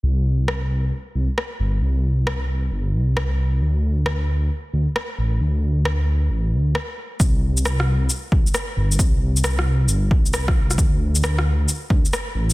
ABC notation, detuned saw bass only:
X:1
M:4/4
L:1/16
Q:"Swing 16ths" 1/4=134
K:Dphr
V:1 name="Detuned saw bass" clef=bass
C,,8 z2 C,,2 z2 G,,,2 | C,,8 G,,,2 C,,6 | D,,8 z2 D,, z3 A,,,2 | D,,8 A,,,2 D,,2 z4 |
C,,8 z2 C,, z3 G,,,2 | C,,8 G,,,2 C,,6 | D,,8 z2 D,, z3 A,,,2 |]